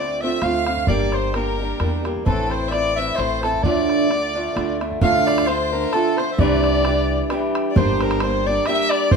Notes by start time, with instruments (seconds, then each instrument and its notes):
Already playing: upright bass D2, steel-string acoustic guitar D3 A3 C4 F4, fiddle D5, soprano saxophone D5
0.21 steel-string acoustic guitar D3 A3 C4 F4, soprano saxophone E5, fiddle E5
0.42 upright bass D2, steel-string acoustic guitar D3 A3 C4 F4, soprano saxophone F5, fiddle F5, bodhran
0.66 steel-string acoustic guitar D3 A3 C4 F4, soprano saxophone F5, bodhran
0.77 bodhran
0.87 upright bass G1, steel-string acoustic guitar G3 A#3 D4 G4, soprano saxophone D5, fiddle D5, bodhran
1.12 soprano saxophone C5, fiddle C5, bodhran
1.34 steel-string acoustic guitar G3 A#3 D4 G4, soprano saxophone A#4, fiddle A#4, bodhran
1.60 steel-string acoustic guitar G3 A#3 D4 G4
1.80 upright bass E2, steel-string acoustic guitar G3 A#3 D4 G4, bodhran
2.04 steel-string acoustic guitar G3 A#3 D4 G4, bodhran
2.17 bodhran
2.25 upright bass A1, steel-string acoustic guitar A2 E3 A3 C4 E4, soprano saxophone A4, fiddle A4, bodhran
2.50 soprano saxophone C5, fiddle C5, bodhran
2.68 soprano saxophone D5, fiddle E5
2.72 steel-string acoustic guitar E3 A3 C4 E4, fiddle D5, bodhran
2.96 steel-string acoustic guitar E3 A3 C4 E4, soprano saxophone E5, fiddle E5
3.16 upright bass A1, steel-string acoustic guitar E3 A3 C4, soprano saxophone C5, fiddle C5, bodhran
3.20 steel-string acoustic guitar E4
3.43 steel-string acoustic guitar E3 A3 C4 E4, soprano saxophone A4, fiddle A4, bodhran
3.54 bodhran
3.63 steel-string acoustic guitar D2 A2 D3 A3 D4 F4, upright bass D2, soprano saxophone D5, fiddle D5, bodhran
3.89 bodhran
4.10 steel-string acoustic guitar D3 A3 D4 F4, bodhran
4.35 steel-string acoustic guitar D3 A3 D4 F4
4.55 upright bass D2, steel-string acoustic guitar D3 A3 D4 F4, bodhran
4.80 steel-string acoustic guitar D3 A3 D4 F4, bodhran
4.92 bodhran
5.01 steel-string acoustic guitar D2 A2 D3 A3 D4 F4, upright bass D2, soprano saxophone F5, fiddle F5, bodhran
5.27 soprano saxophone D5, bodhran
5.38 bodhran
5.47 steel-string acoustic guitar D3 A3 D4 F4, soprano saxophone C5, fiddle C5, bodhran
5.72 steel-string acoustic guitar D3 A3 D4 F4, soprano saxophone A#4
5.93 steel-string acoustic guitar D3 A3 D4 F4, fiddle A4, soprano saxophone A4, bodhran
6.17 steel-string acoustic guitar D3 A3 D4 F4, soprano saxophone C5, fiddle C5, bodhran
6.32 soprano saxophone E5
6.38 upright bass C2, steel-string acoustic guitar C3 E3 G3 D4 G4, fiddle D5, soprano saxophone D5, bodhran
6.64 bodhran
6.85 steel-string acoustic guitar E3 G3 D4 G4, bodhran
7.30 steel-string acoustic guitar E3 G3 D4 G4, bodhran
7.55 bodhran
7.70 fiddle D5
7.76 upright bass G1, steel-string acoustic guitar G3 A#3 D4 G4, soprano saxophone C5, fiddle C5, bodhran
8.01 soprano saxophone A#4, bodhran
8.11 bodhran
8.20 steel-string acoustic guitar G3 A#3 D4 G4, fiddle C5, soprano saxophone C5, bodhran
8.46 steel-string acoustic guitar G3 A#3 D4 G4, fiddle D5, soprano saxophone D5
8.66 steel-string acoustic guitar G3 A#3 D4 G4, fiddle E5, soprano saxophone E5, bodhran
8.73 fiddle E5
8.80 fiddle E5
8.90 soprano saxophone D5, fiddle D5, bodhran
9.11 upright bass C2, steel-string acoustic guitar C3 E3, soprano saxophone C5, fiddle C5, bodhran